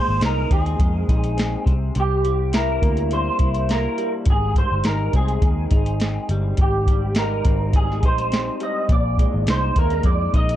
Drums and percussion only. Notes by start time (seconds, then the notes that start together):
0.21 snare, closed hi-hat
0.51 kick, closed hi-hat
0.66 closed hi-hat
0.79 kick, closed hi-hat
1.08 kick, closed hi-hat
1.24 closed hi-hat
1.38 snare, closed hi-hat
1.66 kick, closed hi-hat
1.95 closed hi-hat
2.25 closed hi-hat
2.53 snare, closed hi-hat
2.82 kick, closed hi-hat
2.97 closed hi-hat
3.11 closed hi-hat
3.39 kick, closed hi-hat
3.55 closed hi-hat
3.69 snare, closed hi-hat
3.98 closed hi-hat
4.25 kick, closed hi-hat
4.55 kick, closed hi-hat
4.84 snare, closed hi-hat
5.13 kick, closed hi-hat
5.28 closed hi-hat
5.42 kick, closed hi-hat
5.71 kick, closed hi-hat
5.86 closed hi-hat
6.00 snare, closed hi-hat
6.29 closed hi-hat
6.57 kick, closed hi-hat
6.86 kick, closed hi-hat
7.15 snare, closed hi-hat
7.45 kick, closed hi-hat
7.73 kick, closed hi-hat
7.92 snare
8.03 kick, closed hi-hat
8.18 closed hi-hat
8.32 snare, closed hi-hat
8.60 closed hi-hat
8.89 kick, closed hi-hat
9.18 kick, closed hi-hat
9.47 snare, closed hi-hat
9.76 kick, closed hi-hat
9.90 closed hi-hat
10.03 kick, closed hi-hat
10.33 kick, closed hi-hat
10.49 closed hi-hat